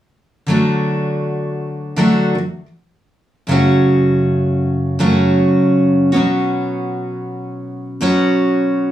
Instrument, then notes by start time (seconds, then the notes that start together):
steel-string acoustic guitar
0.47 D3 F#3 A3 D4
0.51 F#4
1.96 D3 F#3 A3 D4 F#4
2.35 D3 F#3
3.47 F#2 C#3 F#3 A3
3.51 C#4 F#4
4.99 F#2 C#3 F#3 A3 C#4 F#4
6.12 F#3 B3 C#4 F#4
6.17 B2
8.01 B2 F#3 B3 C#4 F#4